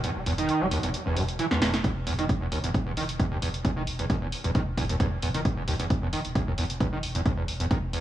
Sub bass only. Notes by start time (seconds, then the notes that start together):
0.16 E1
0.26 E1
0.38 E1
0.61 E1
0.83 E1
1.06 E1
1.17 E1
1.28 E1
1.62 E1
1.74 E1
1.96 E1
2.07 E1
2.19 E1
2.41 E1
2.64 E1
2.86 E1
2.97 E1
3.09 E1
3.42 E1
3.54 E1
3.77 E1
3.87 E1
3.99 E1
4.22 E1
4.44 E1
4.67 E1
4.77 E1
4.89 E1
5.23 E1
5.34 E1
5.57 E1
5.68 E1
5.80 E1
6.02 E1
6.25 E1
6.47 E1
6.58 E1
6.70 E1
7.03 E1
7.15 E1
7.37 E1
7.48 E1
7.60 E1
7.83 E1